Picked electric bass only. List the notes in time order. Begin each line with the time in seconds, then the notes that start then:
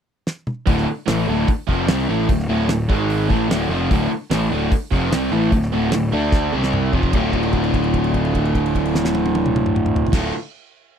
0.67 D1
0.88 muted picked electric bass stroke
1.08 A1
1.29 D1
1.49 muted picked electric bass stroke
1.69 F1
1.88 C2
2.09 A1
2.29 D1
2.49 D1
2.69 D1
2.90 G#1
3.30 A1
3.49 D1
3.69 F1
3.91 D1
4.10 muted picked electric bass stroke
4.31 A1
4.51 D1
4.72 muted picked electric bass stroke
4.92 F1
5.12 C2
5.32 A1
5.52 D1
5.73 D1
5.94 D1
6.13 D2
6.53 C2
6.93 F1
7.13 D1
10.13 D1